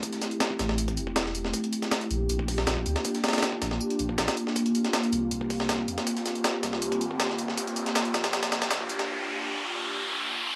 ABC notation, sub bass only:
X:1
M:4/4
L:1/8
Q:1/4=159
K:Gdor
V:1 name="Sub bass" clef=bass
z3 A,,,2 E,,,3 | z3 B,,, B,,,2 B,,, D,, | z3 B,,, z B,,, B,,, z | z3 C,, C,,2 C,, F,, |
z3 C,,2 G,,,3 | z3 B,,, B,,,2 B,,, D,, | z8 |]